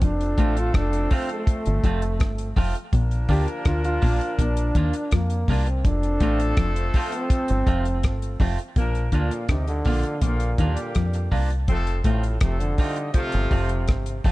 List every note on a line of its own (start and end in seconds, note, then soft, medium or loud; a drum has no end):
0.02 0.34 F1 medium
0.02 0.24 F2 medium
0.02 2.53 F3 medium
0.02 2.52 A3 medium
0.02 2.53 C4 medium
0.02 0.58 D4 loud
0.02 2.52 A4 loud
0.02 kick loud
0.02 closed hi-hat medium
0.21 closed hi-hat soft
0.38 0.70 A1 medium
0.38 0.60 A2 medium
0.38 0.55 A3 medium
0.38 0.56 C4 medium
0.38 0.56 F4 medium
0.38 kick medium
0.38 closed hi-hat medium
0.57 0.78 F4 medium
0.57 closed hi-hat medium
0.74 1.07 F1 medium
0.74 0.96 F2 medium
0.74 1.16 D4 medium
0.74 kick loud
0.74 cross-stick loud
0.74 closed hi-hat medium
0.93 closed hi-hat medium
1.11 1.28 A3 medium
1.11 1.29 C4 medium
1.11 1.31 C4 medium
1.11 1.29 F4 medium
1.11 kick medium
1.11 open hi-hat medium
1.29 2.54 A3 medium
1.29 closed hi-hat soft
1.47 kick loud
1.47 closed hi-hat loud
1.66 1.82 G1 loud
1.66 1.77 G2 medium
1.66 closed hi-hat medium
1.84 2.21 F1 medium
1.84 2.06 F2 medium
1.84 2.01 A3 medium
1.84 2.02 C4 medium
1.84 2.02 F4 medium
1.84 kick medium
1.84 closed hi-hat medium
2.02 closed hi-hat medium
2.19 2.52 G1 medium
2.19 2.41 G2 medium
2.19 kick loud
2.19 cross-stick loud
2.19 closed hi-hat medium
2.38 closed hi-hat medium
2.56 2.73 F1 medium
2.56 2.67 F2 medium
2.56 2.74 A3 loud
2.56 2.74 C4 loud
2.56 2.74 F4 loud
2.56 kick medium
2.56 open hi-hat medium
2.75 closed hi-hat soft
2.93 3.25 A#1 loud
2.93 3.15 A#2 medium
2.93 5.44 F3 medium
2.93 5.44 A#3 loud
2.93 5.44 D4 loud
2.93 5.44 A#4 loud
2.93 kick loud
2.93 closed hi-hat medium
3.11 closed hi-hat soft
3.29 3.46 D2 medium
3.29 3.40 D3 medium
3.29 3.46 A#3 medium
3.29 3.47 D4 loud
3.29 3.47 F4 medium
3.29 3.47 G4 loud
3.29 kick medium
3.29 open hi-hat soft
3.48 closed hi-hat medium
3.65 3.98 D2 medium
3.65 3.88 D3 medium
3.65 3.84 F4 loud
3.65 kick loud
3.65 cross-stick loud
3.65 closed hi-hat medium
3.84 4.35 F4 loud
3.84 muted clean electric guitar stroke soft
3.84 closed hi-hat medium
4.02 4.19 A#1 medium
4.02 4.14 A#2 medium
4.02 4.19 A#3 medium
4.02 4.20 D4 medium
4.02 4.20 F4 medium
4.02 kick medium
4.02 open hi-hat medium
4.21 closed hi-hat medium
4.39 4.71 A#1 loud
4.39 4.61 A#2 medium
4.39 5.15 D4 loud
4.39 kick loud
4.39 closed hi-hat loud
4.57 closed hi-hat medium
4.75 4.91 D#2 medium
4.75 4.87 D#3 medium
4.75 4.93 A#3 medium
4.75 4.93 D4 medium
4.75 4.93 F4 medium
4.75 kick medium
4.75 closed hi-hat medium
4.93 muted clean electric guitar stroke medium
4.93 closed hi-hat medium
5.11 5.44 F2 medium
5.11 5.35 F3 medium
5.11 5.69 A#3 medium
5.11 kick loud
5.11 cross-stick loud
5.11 closed hi-hat medium
5.30 closed hi-hat medium
5.48 5.87 C2 medium
5.48 5.71 C3 medium
5.48 5.66 A#3 medium
5.48 5.66 D4 loud
5.48 5.67 F4 medium
5.48 kick medium
5.48 open hi-hat medium
5.67 5.86 C4 medium
5.67 muted clean electric guitar stroke soft
5.67 closed hi-hat soft
5.84 6.17 F1 medium
5.84 6.07 F2 medium
5.84 8.36 F3 loud
5.84 8.36 A3 loud
5.84 8.36 C4 medium
5.84 6.76 D4 loud
5.84 8.36 A4 loud
5.84 kick loud
5.84 closed hi-hat medium
6.03 closed hi-hat soft
6.20 6.53 A1 medium
6.20 6.43 A2 medium
6.20 6.38 A3 medium
6.20 6.39 C4 medium
6.20 6.39 F4 medium
6.20 kick medium
6.20 closed hi-hat medium
6.40 closed hi-hat medium
6.57 6.89 F1 medium
6.57 6.80 F2 medium
6.57 kick loud
6.57 cross-stick loud
6.57 closed hi-hat medium
6.76 closed hi-hat medium
6.94 7.12 A3 medium
6.94 7.12 C4 medium
6.94 7.12 F4 medium
6.94 kick medium
6.94 open hi-hat medium
7.12 8.18 C4 loud
7.12 closed hi-hat medium
7.30 kick loud
7.30 closed hi-hat medium
7.48 7.65 G1 medium
7.48 7.60 G2 medium
7.48 closed hi-hat medium
7.67 8.05 F1 medium
7.67 7.89 F2 medium
7.67 7.84 A3 medium
7.67 7.84 C4 medium
7.67 7.85 F4 loud
7.67 kick loud
7.67 closed hi-hat medium
7.85 closed hi-hat medium
8.03 8.36 G1 loud
8.03 8.25 G2 medium
8.03 kick loud
8.03 cross-stick loud
8.03 closed hi-hat medium
8.22 closed hi-hat soft
8.40 8.56 F1 medium
8.40 8.51 F2 medium
8.40 8.57 A3 medium
8.40 8.58 C4 medium
8.40 8.58 F4 loud
8.40 kick medium
8.40 open hi-hat medium
8.59 closed hi-hat soft
8.76 9.08 A#1 loud
8.76 8.98 A#2 medium
8.76 9.07 F3 loud
8.76 9.06 A#3 loud
8.76 9.07 D4 loud
8.76 9.06 A#4 loud
8.76 kick loud
8.76 closed hi-hat medium
8.95 closed hi-hat soft
9.12 9.29 D2 medium
9.12 9.50 A#2 medium
9.12 9.24 D3 medium
9.12 9.42 D3 medium
9.12 9.42 F3 medium
9.12 9.30 A#3 medium
9.12 9.43 A#3 medium
9.12 9.31 D4 loud
9.12 9.42 F4 medium
9.12 9.31 F4 medium
9.12 kick medium
9.12 closed hi-hat medium
9.31 closed hi-hat medium
9.49 9.81 D2 medium
9.49 9.68 C3 medium
9.49 9.71 D3 medium
9.49 9.79 G3 medium
9.49 9.78 D#4 medium
9.49 9.79 G4 loud
9.49 9.78 D#5 medium
9.49 kick loud
9.49 cross-stick loud
9.49 closed hi-hat medium
9.68 10.24 D3 loud
9.68 closed hi-hat soft
9.85 10.02 A#1 medium
9.85 9.97 A#2 medium
9.85 10.15 D3 medium
9.85 10.15 F3 medium
9.85 10.03 A#3 medium
9.85 10.15 A#3 medium
9.85 10.04 D4 medium
9.85 10.15 F4 medium
9.85 10.04 F4 medium
9.85 kick medium
9.85 open hi-hat medium
10.03 closed hi-hat soft
10.21 10.54 A#1 medium
10.21 11.32 A#2 medium
10.21 10.45 A#2 medium
10.21 10.52 D3 medium
10.21 10.51 F3 medium
10.21 10.51 A#3 medium
10.21 10.51 F4 loud
10.21 kick loud
10.21 closed hi-hat medium
10.40 closed hi-hat soft
10.58 10.75 D#2 medium
10.58 11.28 D3 medium
10.58 10.70 D#3 medium
10.58 11.28 G3 medium
10.58 11.28 A#3 medium
10.58 10.76 A#3 medium
10.58 10.77 D4 medium
10.58 10.77 F4 loud
10.58 11.28 G4 medium
10.58 kick medium
10.58 closed hi-hat medium
10.77 closed hi-hat medium
10.95 11.28 F2 medium
10.95 11.18 F3 medium
10.95 kick loud
10.95 cross-stick loud
10.95 closed hi-hat medium
11.13 muted clean electric guitar stroke soft
11.13 closed hi-hat soft
11.32 11.70 C2 medium
11.32 11.54 C3 medium
11.32 11.49 A#3 medium
11.32 11.49 D4 loud
11.32 11.50 F4 medium
11.32 kick medium
11.32 open hi-hat medium
11.50 closed hi-hat soft
11.68 12.01 F1 medium
11.68 11.91 F2 medium
11.68 11.98 F3 loud
11.68 11.98 A3 loud
11.68 11.98 C4 loud
11.68 11.98 A4 loud
11.68 kick loud
11.68 closed hi-hat medium
11.87 closed hi-hat soft
12.04 12.37 A1 medium
12.04 12.39 A2 medium
12.04 12.27 A2 medium
12.04 12.35 C3 medium
12.04 12.35 F3 medium
12.04 12.22 A3 medium
12.04 12.35 A3 medium
12.04 12.23 C4 medium
12.04 12.35 F4 medium
12.04 12.23 F4 medium
12.04 kick medium
12.04 closed hi-hat medium
12.23 closed hi-hat soft
12.41 12.74 F1 medium
12.41 12.63 F2 medium
12.41 12.61 C3 loud
12.41 12.72 F3 medium
12.41 12.72 A3 medium
12.41 12.72 C4 medium
12.41 12.72 A4 loud
12.41 kick loud
12.41 cross-stick loud
12.41 closed hi-hat medium
12.60 13.13 D3 loud
12.60 closed hi-hat medium
12.78 13.08 G3 medium
12.78 12.96 A3 medium
12.78 12.96 C4 medium
12.78 13.08 D#4 medium
12.78 12.97 F4 loud
12.78 13.08 G4 medium
12.78 13.08 D#5 medium
12.78 kick loud
12.78 open hi-hat medium
12.96 closed hi-hat soft
13.13 14.20 C3 medium
13.13 13.84 C3 loud
13.13 13.84 F3 loud
13.13 13.84 A3 loud
13.13 13.84 F4 loud
13.13 kick loud
13.13 closed hi-hat medium
13.32 13.50 G1 medium
13.32 13.45 G2 medium
13.32 closed hi-hat medium
13.51 13.89 F1 medium
13.51 13.75 F2 medium
13.51 13.69 A3 medium
13.51 13.69 C4 medium
13.51 13.70 F4 medium
13.51 kick medium
13.51 open hi-hat soft
13.69 closed hi-hat medium
13.88 14.21 G1 medium
13.88 14.11 G2 medium
13.88 kick loud
13.88 cross-stick loud
13.88 closed hi-hat medium
14.06 closed hi-hat medium
14.24 14.32 F1 medium
14.24 14.32 F2 medium
14.24 14.32 A3 medium
14.24 14.32 C4 medium
14.24 14.32 F4 loud
14.24 kick medium
14.24 open hi-hat medium